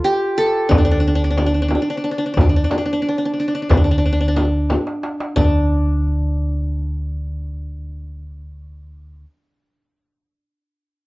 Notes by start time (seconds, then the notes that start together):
Already playing: F4 A4
0.04 G4
0.38 A4
0.69 D2 D4, frame drum, darbuka dum
0.78 D4
0.85 D4
0.91 D4
1.00 D4
1.07 D4
1.15 D4
1.24 D4
1.30 D4
1.37 D4, darbuka tek, frame drum
1.46 D4
1.54 D4
1.62 D4
1.68 D4, darbuka tek, frame drum
1.75 D4
1.82 D4
1.90 D4
1.97 D4
2.04 D4
2.11 D4
2.18 D4
2.26 D4
2.34 D2 D4, frame drum, darbuka dum
2.41 D4
2.49 D4
2.56 D4
2.64 D4
2.71 D4, darbuka tek, frame drum
2.78 D4
2.86 D4
2.93 D4
3.02 D4, darbuka ka
3.09 D4
3.18 D4
3.25 D4
3.33 D4, darbuka ka
3.40 D4
3.48 D4
3.55 D4
3.62 D4
3.69 D2 D4, darbuka dum, frame drum
3.77 D4
3.84 D4
3.91 D4
3.98 D4
4.06 D4
4.13 D4
4.21 D4
4.28 D4
4.36 D4, darbuka tek, frame drum
4.70 darbuka tek, frame drum
4.87 darbuka ka
5.03 darbuka tek
5.21 darbuka ka
5.36 D2 D4, frame drum, darbuka dum